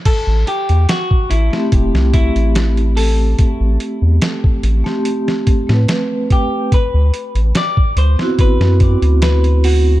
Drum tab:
CC |x---------------|----------------|----------------|
HH |x-xxx-x-x-xxxxo-|x-x-x-x-x-x-x-x-|x-xxx-x-x-xxxxo-|
SD |----o--o-o--o---|----o--o-o-oo---|----o--o-o--o---|
BD |o----o--o-o-----|o----o----o---o-|o----o--o-o-----|